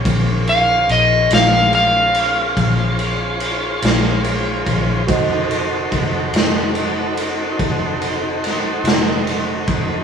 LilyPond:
<<
  \new Staff \with { instrumentName = "Electric slide guitar" } { \time 12/8 \key bes \minor \tempo 4. = 48 r8 f''8 ees''8 f''8 f''2. r4 | r1. | }
  \new Staff \with { instrumentName = "Grand piano" } { \time 12/8 \key bes \minor r1. | <ges' a' c'' ees''>1. | }
  \new Staff \with { instrumentName = "Tonewheel organ" } { \time 12/8 \key bes \minor <f' aes' c'' des''>1. | <ees' ges' a' c''>1. | }
  \new Staff \with { instrumentName = "Fingered electric bass" } { \clef bass \time 12/8 \key bes \minor bes,,4 bes,,8 bes,,4. bes,,4. bes,,4 bes,,8 | f,,4 f,,8 f,,4. f,,4. f,,4 f,,8 | }
  \new DrumStaff \with { instrumentName = "Drums" } \drummode { \time 12/8 <bd cymr>8 cymr8 cymr8 <cymr sn>8 cymr8 cymr8 <bd cymr>8 cymr8 cymr8 <cymr sn>8 cymr8 <bd cymr>8 | <bd cymr>8 cymr8 <bd cymr>8 <cymr sn>8 cymr8 cymr8 <bd cymr>8 cymr8 <cymr sn>8 <cymr sn>8 cymr8 <bd cymr>8 | }
>>